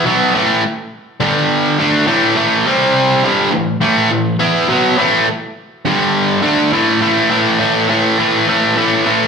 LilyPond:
\new Staff \with { instrumentName = "Distorted electric guitar" } { \clef bass \time 4/4 \key a \minor \tempo 4 = 103 <b, fis b>8 <a, e a>8 r4 <g, d g>4 <d a d'>8 <a, e a>8 | <a, e a>8 <c g c'>4 <g, d g>8 <a, e>8 <a, e a>8 <a, e>8 <e b e'>8 | <b, fis b>8 <a, e a>8 r4 <g, d g>4 <d a d'>8 <a, e a>8 | <a, e a>8 <a, e a>8 <a, e a>8 <a, e a>8 <a, e a>8 <a, e a>8 <a, e a>8 <a, e a>8 | }